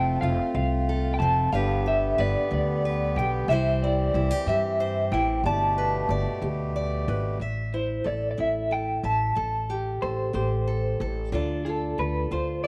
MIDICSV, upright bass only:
0, 0, Header, 1, 2, 480
1, 0, Start_track
1, 0, Key_signature, 0, "minor"
1, 0, Tempo, 653595
1, 1127, Time_signature, 6, 3, 24, 8
1, 9305, End_track
2, 0, Start_track
2, 0, Title_t, "Upright bass"
2, 0, Program_c, 0, 32
2, 0, Note_on_c, 0, 29, 99
2, 144, Note_off_c, 0, 29, 0
2, 163, Note_on_c, 0, 29, 91
2, 279, Note_off_c, 0, 29, 0
2, 400, Note_on_c, 0, 36, 88
2, 859, Note_off_c, 0, 36, 0
2, 878, Note_on_c, 0, 29, 94
2, 1110, Note_off_c, 0, 29, 0
2, 1121, Note_on_c, 0, 31, 89
2, 1579, Note_off_c, 0, 31, 0
2, 1606, Note_on_c, 0, 31, 95
2, 1720, Note_off_c, 0, 31, 0
2, 1847, Note_on_c, 0, 38, 93
2, 2301, Note_off_c, 0, 38, 0
2, 2321, Note_on_c, 0, 35, 96
2, 2550, Note_off_c, 0, 35, 0
2, 2556, Note_on_c, 0, 36, 98
2, 3015, Note_off_c, 0, 36, 0
2, 3042, Note_on_c, 0, 36, 90
2, 3156, Note_off_c, 0, 36, 0
2, 3278, Note_on_c, 0, 43, 97
2, 3736, Note_off_c, 0, 43, 0
2, 3757, Note_on_c, 0, 33, 100
2, 3987, Note_off_c, 0, 33, 0
2, 3992, Note_on_c, 0, 31, 98
2, 4452, Note_off_c, 0, 31, 0
2, 4472, Note_on_c, 0, 31, 89
2, 4590, Note_off_c, 0, 31, 0
2, 4712, Note_on_c, 0, 38, 84
2, 5172, Note_off_c, 0, 38, 0
2, 5199, Note_on_c, 0, 32, 91
2, 5428, Note_off_c, 0, 32, 0
2, 5431, Note_on_c, 0, 33, 79
2, 5892, Note_off_c, 0, 33, 0
2, 5916, Note_on_c, 0, 33, 84
2, 6147, Note_off_c, 0, 33, 0
2, 6159, Note_on_c, 0, 33, 82
2, 6617, Note_off_c, 0, 33, 0
2, 6635, Note_on_c, 0, 33, 87
2, 6866, Note_off_c, 0, 33, 0
2, 6878, Note_on_c, 0, 33, 86
2, 7336, Note_off_c, 0, 33, 0
2, 7361, Note_on_c, 0, 33, 79
2, 7588, Note_off_c, 0, 33, 0
2, 7592, Note_on_c, 0, 33, 79
2, 8054, Note_off_c, 0, 33, 0
2, 8079, Note_on_c, 0, 33, 94
2, 8309, Note_off_c, 0, 33, 0
2, 8314, Note_on_c, 0, 38, 89
2, 8775, Note_off_c, 0, 38, 0
2, 8801, Note_on_c, 0, 38, 81
2, 9031, Note_off_c, 0, 38, 0
2, 9039, Note_on_c, 0, 38, 75
2, 9305, Note_off_c, 0, 38, 0
2, 9305, End_track
0, 0, End_of_file